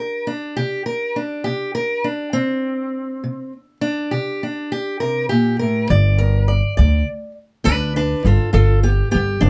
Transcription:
Already playing: steel-string acoustic guitar C3 A#4
0.27 steel-string acoustic guitar D4
0.57 steel-string acoustic guitar C3 G4
0.86 steel-string acoustic guitar A#4
1.16 steel-string acoustic guitar D4
1.44 steel-string acoustic guitar C3 G4
1.75 steel-string acoustic guitar A#4
2.04 steel-string acoustic guitar D4
2.33 steel-string acoustic guitar C3 C4
3.24 steel-string acoustic guitar C3
3.81 steel-string acoustic guitar D4
4.11 steel-string acoustic guitar C3 G4
4.43 steel-string acoustic guitar D4
4.72 steel-string acoustic guitar G4
5.00 steel-string acoustic guitar C3 A#4
5.29 steel-string acoustic guitar A#2 G4
5.59 steel-string acoustic guitar A2 A#4
5.90 upright bass G1, steel-string acoustic guitar G3 D5
6.18 steel-string acoustic guitar A#4
6.48 steel-string acoustic guitar D5
6.77 upright bass D2, steel-string acoustic guitar G3 D5
7.64 upright bass D2, steel-string acoustic guitar G3 D4 B4
7.96 steel-string acoustic guitar D4 B4
8.25 upright bass G1, steel-string acoustic guitar F4 A4
8.53 upright bass G1, steel-string acoustic guitar G3 F4 A4
8.83 steel-string acoustic guitar B3 G4
9.11 upright bass G1, steel-string acoustic guitar B3 G4
9.41 upright bass G1, steel-string acoustic guitar G3 D4

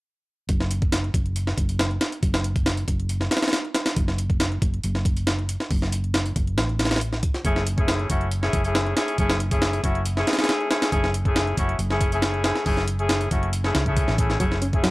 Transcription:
0.49 fingered electric bass F#1, kick, closed hi-hat
0.60 snare, closed hi-hat
0.71 closed hi-hat
0.82 kick, closed hi-hat
0.92 snare, closed hi-hat
1.04 closed hi-hat
1.14 fingered electric bass F#1, kick, closed hi-hat
1.26 closed hi-hat
1.36 closed hi-hat
1.47 snare, closed hi-hat
1.58 fingered electric bass F#1, kick, closed hi-hat
1.69 closed hi-hat
1.79 snare, closed hi-hat
1.91 closed hi-hat
2.01 snare, closed hi-hat
2.12 closed hi-hat
2.23 fingered electric bass F#1, kick, closed hi-hat
2.34 snare, closed hi-hat
2.44 closed hi-hat
2.56 kick, closed hi-hat
2.66 snare, closed hi-hat
2.77 closed hi-hat
2.88 fingered electric bass F#1, kick, closed hi-hat
3.00 closed hi-hat
3.09 closed hi-hat
3.21 snare, closed hi-hat
3.31 snare, closed hi-hat
3.37 snare, closed hi-hat
3.42 snare, closed hi-hat
3.48 snare, closed hi-hat
3.53 snare, closed hi-hat
3.65 closed hi-hat
3.75 snare, closed hi-hat
3.86 snare, closed hi-hat
3.96 fingered electric bass F#1, kick, closed hi-hat
4.08 snare, closed hi-hat
4.18 closed hi-hat
4.30 kick, closed hi-hat
4.40 snare, closed hi-hat
4.52 closed hi-hat
4.62 fingered electric bass F#1, kick, closed hi-hat
4.74 closed hi-hat
4.84 fingered electric bass F#1, closed hi-hat
4.95 snare, closed hi-hat
5.05 kick, closed hi-hat
5.17 closed hi-hat
5.27 snare, closed hi-hat
5.39 closed hi-hat
5.49 closed hi-hat
5.60 snare, closed hi-hat
5.71 fingered electric bass F#1, kick, closed hi-hat, open hi-hat
5.82 snare, closed hi-hat
5.92 closed hi-hat
6.04 closed hi-hat
6.14 snare, closed hi-hat
6.26 closed hi-hat
6.36 fingered electric bass F#1, kick, closed hi-hat
6.47 closed hi-hat
6.57 fingered electric bass A1, snare, closed hi-hat
6.69 closed hi-hat
6.79 snare, closed hi-hat
6.85 snare, closed hi-hat
6.91 snare, closed hi-hat
6.96 snare, closed hi-hat
7.01 closed hi-hat
7.13 snare, closed hi-hat
7.23 kick, closed hi-hat
7.34 snare, closed hi-hat
7.44 fingered electric bass F#1, horn section A3 C#4 E4 G#4, kick, closed hi-hat
7.56 snare, closed hi-hat
7.67 closed hi-hat
7.78 horn section A3 C#4 E4 G#4, kick, closed hi-hat
7.88 snare, closed hi-hat
7.99 closed hi-hat
8.10 fingered electric bass F#1, horn section A3 C#4 E4 F#4, kick, closed hi-hat
8.21 closed hi-hat
8.31 closed hi-hat
8.43 horn section A3 C#4 E4 G#4, snare, closed hi-hat
8.53 fingered electric bass F#1, kick, closed hi-hat
8.64 horn section A3 C#4 E4 G#4, closed hi-hat
8.75 snare, closed hi-hat
8.86 closed hi-hat
8.96 horn section A3 C#4 E4 G#4, snare, closed hi-hat
9.08 closed hi-hat
9.18 fingered electric bass F#1, horn section A3 C#4 E4 G#4, kick, closed hi-hat
9.30 snare, closed hi-hat
9.40 closed hi-hat
9.51 horn section A3 C#4 E4 G#4, kick, closed hi-hat
9.62 snare, closed hi-hat
9.73 closed hi-hat
9.83 fingered electric bass F#1, horn section A3 C#4 E4 F#4, kick, closed hi-hat
9.95 closed hi-hat
10.05 closed hi-hat
10.16 horn section A3 C#4 E4 G#4, snare, closed hi-hat
10.27 snare, closed hi-hat
10.33 snare, closed hi-hat
10.38 horn section A3 C#4 E4 G#4, snare, closed hi-hat
10.44 snare, closed hi-hat
10.49 snare, closed hi-hat
10.60 closed hi-hat
10.70 horn section A3 C#4 E4 G#4, snare, closed hi-hat
10.82 snare, closed hi-hat
10.92 fingered electric bass F#1, horn section A3 C#4 E4 G#4, kick, closed hi-hat
11.04 snare, closed hi-hat
11.14 closed hi-hat
11.25 horn section A3 C#4 E4 G#4, kick, closed hi-hat
11.36 snare, closed hi-hat
11.47 closed hi-hat
11.57 fingered electric bass F#1, horn section A3 C#4 E4 F#4, kick, closed hi-hat
11.69 closed hi-hat
11.79 fingered electric bass F#1, closed hi-hat
11.90 horn section A3 C#4 E4 G#4, snare, closed hi-hat
12.01 kick, closed hi-hat
12.12 horn section A3 C#4 E4 G#4, closed hi-hat
12.22 snare, closed hi-hat
12.34 closed hi-hat
12.44 horn section A3 C#4 E4 G#4, snare, closed hi-hat
12.55 snare, closed hi-hat
12.66 fingered electric bass F#1, horn section A3 C#4 E4 G#4, kick, closed hi-hat, open hi-hat
12.77 snare, closed hi-hat
12.88 closed hi-hat
12.99 horn section A3 C#4 E4 G#4, closed hi-hat
13.09 snare, closed hi-hat
13.21 closed hi-hat
13.31 fingered electric bass F#1, horn section A3 C#4 E4 F#4, kick, closed hi-hat
13.43 closed hi-hat
13.53 closed hi-hat
13.64 horn section A3 C#4 E4 G#4, snare, closed hi-hat
13.75 fingered electric bass C#2, snare, closed hi-hat
13.86 horn section A3 C#4 E4 G#4, kick, closed hi-hat
13.97 kick, closed hi-hat
14.08 fingered electric bass A1, snare, closed hi-hat
14.18 horn section A3 C#4 E4 G#4, kick, closed hi-hat
14.30 snare, closed hi-hat
14.40 fingered electric bass F#1, reed electric piano F#3, horn section A3 C#4 E4 G#4, kick, closed hi-hat
14.51 snare, closed hi-hat
14.62 reed electric piano C#4, closed hi-hat
14.73 horn section A3 C#4 E4 G#4, kick, closed hi-hat
14.84 reed electric piano F#3, snare, closed hi-hat

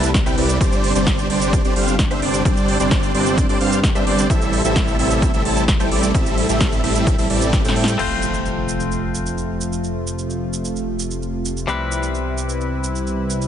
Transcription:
Already playing: analog synth bass C2, analog synth pad C3 G3 A3 E4, supersaw synth G3 C4 E4 B4 A5
0.03 closed hi-hat, cabasa
0.14 kick, snare, closed hi-hat, cabasa
0.26 analog synth bass C2, supersaw synth G3 C4 E4 B4 G5, cross-stick, closed hi-hat, cabasa
0.38 analog synth bass C2, supersaw synth G3 C4 E4 B4 D5, open hi-hat
0.49 closed hi-hat, cabasa
0.61 analog synth bass G1, analog synth pad C3 D4 G4, supersaw synth G3 C4 D4 C5 D5, kick, closed hi-hat, cabasa
0.72 closed hi-hat, cabasa
0.84 open hi-hat
0.95 analog synth bass G1, supersaw synth G3 C4 D4 C5 D5, closed hi-hat, cabasa
1.07 kick, snare, closed hi-hat, cabasa
1.19 cabasa
1.30 analog synth bass G1, supersaw synth G3 C4 D4 C5 D5, open hi-hat
1.41 closed hi-hat, cabasa
1.53 kick, closed hi-hat, cabasa
1.65 analog synth bass G1, supersaw synth G3 C4 D4 C5 D5, closed hi-hat, cabasa
1.76 analog synth bass G1, supersaw synth G3 C4 D4 C5 F5, open hi-hat
1.88 closed hi-hat, cabasa
1.99 kick, snare, closed hi-hat, cabasa
2.11 analog synth bass G1, supersaw synth G3 C4 D4 C5 E5, cross-stick, closed hi-hat, cabasa
2.22 analog synth bass G1, supersaw synth G3 C4 D4 C5 D5, open hi-hat
2.34 closed hi-hat, cabasa
2.45 analog synth bass G1, supersaw synth G3 C4 D4 C5 D5, analog synth pad C4, kick, closed hi-hat, cabasa
2.57 closed hi-hat, cabasa
2.68 open hi-hat
2.80 analog synth bass G1, supersaw synth G3 C4 D4 C5 D5, closed hi-hat, cabasa
2.91 kick, snare, closed hi-hat, cabasa
3.03 closed hi-hat, cabasa
3.15 analog synth bass G1, supersaw synth G3 C4 D4 C5 D5, open hi-hat
3.26 closed hi-hat, cabasa
3.38 kick, closed hi-hat, cabasa
3.49 analog synth bass G1, supersaw synth G3 C4 D4 C5 D5, open hi-hat, cabasa
3.60 analog synth bass G1, supersaw synth G3 C4 D4 C5 F5, open hi-hat
3.72 closed hi-hat, cabasa
3.84 kick, snare, closed hi-hat, cabasa
3.95 analog synth bass G2, supersaw synth G3 C4 D4 C5 E5, cross-stick, closed hi-hat, cabasa
4.07 analog synth bass G1, supersaw synth G3 C4 D4 C5 D5, open hi-hat
4.18 closed hi-hat, cabasa
4.30 analog synth bass A1, supersaw synth G3 C4 E4 A4 E5, analog synth pad A3 E4, kick, closed hi-hat, cabasa
4.42 closed hi-hat, cabasa
4.53 open hi-hat
4.64 analog synth bass A1, supersaw synth G3 C4 E4 A4 E5, closed hi-hat, cabasa
4.76 kick, snare, closed hi-hat, cabasa
4.88 cabasa
4.99 analog synth bass A1, supersaw synth G3 C4 E4 A4 E5, open hi-hat
5.11 closed hi-hat, cabasa
5.22 kick, closed hi-hat, cabasa
5.34 analog synth bass A1, supersaw synth G3 C4 E4 A4 E5, closed hi-hat, cabasa
5.45 analog synth bass A1, supersaw synth G3 C4 E4 A4 A5, open hi-hat
5.57 closed hi-hat, cabasa
5.68 kick, snare, closed hi-hat, cabasa
5.80 analog synth bass A1, supersaw synth G3 C4 E4 A4 G5, cross-stick, closed hi-hat, cabasa
5.91 analog synth bass A1, supersaw synth G3 C4 E4 A4 D5, open hi-hat
6.03 closed hi-hat, cabasa
6.14 analog synth bass A1, supersaw synth G3 C4 E4 A4 E5, kick, closed hi-hat, cabasa
6.26 closed hi-hat, cabasa
6.38 open hi-hat
6.49 analog synth bass A1, supersaw synth G3 C4 E4 A4 E5, closed hi-hat, cabasa
6.61 kick, snare, closed hi-hat, cabasa
6.72 closed hi-hat, cabasa
6.84 analog synth bass A1, supersaw synth G3 C4 E4 A4 E5, cross-stick, open hi-hat
6.95 closed hi-hat, cabasa
7.07 kick, closed hi-hat, cabasa
7.18 analog synth bass A1, supersaw synth G3 C4 E4 A4 E5, open hi-hat, cabasa
7.30 analog synth bass A1, supersaw synth G3 C4 E4 A4 D5, open hi-hat
7.42 closed hi-hat, cabasa
7.53 kick, snare, closed hi-hat, cabasa
7.64 analog synth bass A2, supersaw synth G3 C4 E4 A4 G5, snare, closed hi-hat, cabasa
7.76 open hi-hat
7.84 snare, closed hi-hat
7.88 cabasa
7.98 analog synth bass F1, analog synth pad C3 F3 A3 F4, clean electric guitar A3 C4 F4 C5, crash, impact, cabasa
8.22 cabasa
8.34 cabasa
8.46 cabasa
8.69 cabasa
8.80 cabasa
8.92 cabasa
9.15 cabasa
9.26 cabasa
9.38 cabasa
9.61 cabasa
9.73 cabasa
9.84 cabasa
10.07 cabasa
10.19 cabasa
10.30 cabasa
10.53 cabasa
10.65 cabasa
10.76 cabasa
10.99 cabasa
11.11 cabasa
11.22 cabasa
11.45 cabasa
11.57 cabasa
11.67 analog synth bass C2, clean electric guitar C3 G3 C4 E4 B4, analog synth pad G3 E4 B4, cabasa
11.92 cabasa
12.03 cabasa
12.15 cabasa
12.38 cabasa
12.49 cabasa
12.61 cabasa
12.84 cabasa
12.95 cabasa
13.07 cabasa
13.30 cabasa
13.42 cabasa

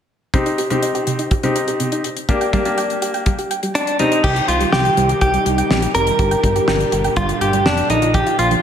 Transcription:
0.34 synth arpeggio sound C3, grand piano C4 D#4 G4, kick, closed hi-hat
0.46 synth arpeggio sound D#4, closed hi-hat
0.58 synth arpeggio sound G4, closed hi-hat
0.70 synth arpeggio sound C3, grand piano C4 D#4 G4, closed hi-hat
0.82 synth arpeggio sound D#4, closed hi-hat
0.95 synth arpeggio sound G4, closed hi-hat
1.07 synth arpeggio sound C3, closed hi-hat
1.19 synth arpeggio sound D#4, closed hi-hat
1.31 synth arpeggio sound G4, kick, closed hi-hat
1.43 synth arpeggio sound C3, grand piano C4 D#4 G4, closed hi-hat
1.56 synth arpeggio sound D#4, closed hi-hat
1.68 synth arpeggio sound G4, closed hi-hat
1.80 synth arpeggio sound C3, closed hi-hat
1.92 synth arpeggio sound D#4, closed hi-hat
2.04 closed hi-hat
2.17 closed hi-hat
2.29 grand piano A#3 D4 G4, synth arpeggio sound G4, kick, closed hi-hat
2.41 synth arpeggio sound G5, closed hi-hat
2.53 synth arpeggio sound G3, grand piano A#3 D4 G4, kick, closed hi-hat
2.65 grand piano A#3 D4 G4, synth arpeggio sound G4, closed hi-hat
2.78 synth arpeggio sound G5, closed hi-hat
2.90 closed hi-hat
3.02 synth arpeggio sound G4, closed hi-hat
3.14 synth arpeggio sound G5, closed hi-hat
3.26 synth arpeggio sound G3, kick, closed hi-hat
3.38 synth arpeggio sound G4, closed hi-hat
3.51 synth arpeggio sound G5, closed hi-hat
3.63 synth arpeggio sound G3, closed hi-hat
3.75 clean electric guitar D4, closed hi-hat
3.87 closed hi-hat
3.99 synth arpeggio sound C3, grand piano C4 D#4 G4, clean electric guitar D#4, closed hi-hat
4.12 synth arpeggio sound D#4, closed hi-hat
4.24 analog synth bass C2, string machine C3 D#3 G3 D#4 G4, synth arpeggio sound G3, clean electric guitar G4, kick, crash
4.36 synth arpeggio sound G4, closed hi-hat
4.48 analog synth bass C2, clean electric guitar F4, synth arpeggio sound G5, closed hi-hat
4.61 synth arpeggio sound G3, closed hi-hat
4.72 analog synth bass C2, clean electric guitar G4, synth arpeggio sound G4, snare
4.85 synth arpeggio sound G5, closed hi-hat
4.97 analog synth bass C2, synth arpeggio sound G3, closed hi-hat
5.09 synth arpeggio sound G4, closed hi-hat
5.21 analog synth bass C2, clean electric guitar G4, synth arpeggio sound G5, kick, closed hi-hat
5.34 synth arpeggio sound G3, closed hi-hat
5.46 analog synth bass C2, synth arpeggio sound G4, closed hi-hat
5.58 synth arpeggio sound G5, closed hi-hat
5.70 analog synth bass A#1, synth arpeggio sound G3, snare
5.82 synth arpeggio sound G4, closed hi-hat
5.95 analog synth bass F1, clean electric guitar A#4, closed hi-hat
6.07 closed hi-hat
6.19 analog synth bass G1, string machine A#2 D3 D4, synth arpeggio sound G4, kick, closed hi-hat
6.31 synth arpeggio sound G5, closed hi-hat
6.43 analog synth bass G1, synth arpeggio sound G3, kick, closed hi-hat
6.56 synth arpeggio sound G4, closed hi-hat
6.68 analog synth bass G1, synth arpeggio sound G5, snare
6.80 closed hi-hat
6.92 analog synth bass G1, synth arpeggio sound G4, closed hi-hat
7.04 synth arpeggio sound G5, closed hi-hat
7.16 analog synth bass G1, synth arpeggio sound G3, clean electric guitar F4, kick, closed hi-hat
7.29 synth arpeggio sound G4, closed hi-hat
7.41 analog synth bass G1, clean electric guitar G4, synth arpeggio sound G5, closed hi-hat
7.53 synth arpeggio sound G3, closed hi-hat
7.66 analog synth bass F1, clean electric guitar D4, snare
7.78 closed hi-hat
7.90 analog synth bass A#1, string machine A#2 F3 F4, synth arpeggio sound F3, clean electric guitar D#4, closed hi-hat
8.02 synth arpeggio sound F4, closed hi-hat
8.14 synth arpeggio sound F3, clean electric guitar G4, kick, closed hi-hat
8.26 synth arpeggio sound F4, closed hi-hat
8.39 analog synth bass A#1, clean electric guitar F4, synth arpeggio sound F5, closed hi-hat
8.51 synth arpeggio sound F3, closed hi-hat

